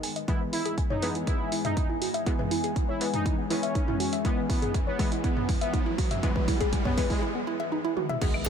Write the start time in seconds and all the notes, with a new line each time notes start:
Already playing: D#3 G#3 B3 D#4 A#4 B4
0.03 G#5, open hi-hat
0.16 D#5, closed hi-hat
0.28 E3 G#3 B3 E4 F#5 G#5, kick, closed hi-hat, riser
0.41 B4
0.53 E4, open hi-hat
0.65 G#4, closed hi-hat
0.78 G#5, kick, closed hi-hat
0.90 D#4 C#5, mid tom
1.02 E3 G#3 B3 B4, open hi-hat
1.15 E4, closed hi-hat
1.27 E4, kick, closed hi-hat
1.40 B3
1.52 E4, open hi-hat
1.65 D#4 E5, closed hi-hat, mid tom
1.77 D#4, kick, closed hi-hat
1.89 E4
2.02 F#4, open hi-hat
2.14 E5, closed hi-hat
2.26 E3 G#3 B3 E4, kick, closed hi-hat
2.39 B4, mid tom
2.51 E4, open hi-hat
2.64 G#4, closed hi-hat
2.76 G#5, kick, closed hi-hat
2.89 E4 C#5
3.01 E3 G#3 B3 B4, open hi-hat
3.13 D#4 E4, closed hi-hat, mid tom
3.26 E4, kick, closed hi-hat
3.38 B3
3.50 E3 G#3 B3 C#4 E4, open hi-hat
3.63 E5, closed hi-hat
3.75 D#4, kick, closed hi-hat
3.88 E4, mid tom
4.00 F#4, open hi-hat
4.13 E5, closed hi-hat
4.25 E3 G#3 B3 E4, kick, closed hi-hat
4.37 B4
4.50 B3 E4, kick, open hi-hat
4.62 G#4, closed hi-hat, mid tom
4.74 G#5, kick, closed hi-hat
4.87 B3 C#5
4.99 E3 G#3 B3 B4, kick, open hi-hat
5.12 E4, closed hi-hat
5.24 B3 E4, kick, closed hi-hat
5.37 B3, mid tom
5.49 E4, kick, open hi-hat
5.61 B3 E5, closed hi-hat
5.74 D#4, kick, closed hi-hat
5.86 E4
5.98 F#4, kick, open hi-hat
6.11 E5, closed hi-hat, mid tom
6.23 E3 G#3 B3 E4, kick, closed hi-hat
6.36 B4, kick
6.48 E4, kick, open hi-hat
6.61 G#4, kick, closed hi-hat
6.73 G#5, kick, closed hi-hat
6.85 B3 C#5, kick, mid tom
6.97 E3 G#3 B3 B4, kick, open hi-hat
7.10 G#3 E4, kick, open hi-hat
7.22 E4
7.35 B3
7.47 E4
7.60 E5
7.72 D#4
7.85 E4
7.97 F#4, high tom
8.09 E5, mid tom
8.21 D#3 G#3 B3 D#4 G#4 A#4 G#5, kick, closed hi-hat, crash, impact
8.34 D#5 D#6, claves